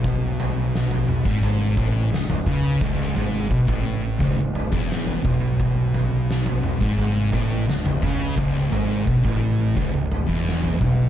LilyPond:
<<
  \new Staff \with { instrumentName = "Distorted electric guitar" } { \clef bass \time 4/4 \key cis \minor \tempo 4 = 86 b,4.~ b,16 gis,8. a,8 cis,16 cis,16 cis8 | cis,8 gis,8 b,16 a,8. cis,16 cis,8 e,8. b,8~ | b,4.~ b,16 gis,8. a,8 cis,16 cis,16 cis8 | cis,8 gis,8 b,16 a,8. cis,16 cis,8 e,8. b,8 | }
  \new Staff \with { instrumentName = "Distorted electric guitar" } { \clef bass \time 4/4 \key cis \minor b,4.~ b,16 gis,8. a,8 cis,16 cis,16 cis8 | cis,8 gis,8 b,16 a,8. cis,16 cis,8 e,8. b,8~ | b,4.~ b,16 gis,8. a,8 cis,16 cis,16 cis8 | cis,8 gis,8 b,16 a,8. cis,16 cis,8 e,8. b,8 | }
  \new Staff \with { instrumentName = "Picked electric bass" } { \clef bass \time 4/4 \key cis \minor b,,4.~ b,,16 gis,,8. a,,8 cis,,16 cis,,16 cis,8 | cis,,8 gis,,8 b,,16 a,,8. cis,,16 cis,,8 e,,8. b,,8~ | b,,4.~ b,,16 gis,,8. a,,8 cis,,16 cis,,16 cis,8 | cis,,8 gis,,8 b,,16 a,,8. cis,,16 cis,,8 e,,8. b,,8 | }
  \new DrumStaff \with { instrumentName = "Drums" } \drummode { \time 4/4 <bd tomfh>8 tomfh8 sn16 tomfh16 toml16 bd16 tomfh8 <bd tomfh>8 sn16 <tomfh toml>16 <bd toml>8 | <bd tomfh>8 tomfh8 bd16 <bd tomfh>8. <bd tomfh>8 tomfh16 bd16 sn16 tomfh16 <bd toml>8 | <bd tomfh>8 tomfh8 sn16 tomfh16 toml16 bd16 tomfh8 <bd tomfh>8 sn16 <tomfh toml>16 <bd toml>8 | <bd tomfh>8 tomfh8 bd16 <bd tomfh>8. <bd tomfh>8 tomfh16 bd16 sn16 tomfh16 <bd toml>8 | }
>>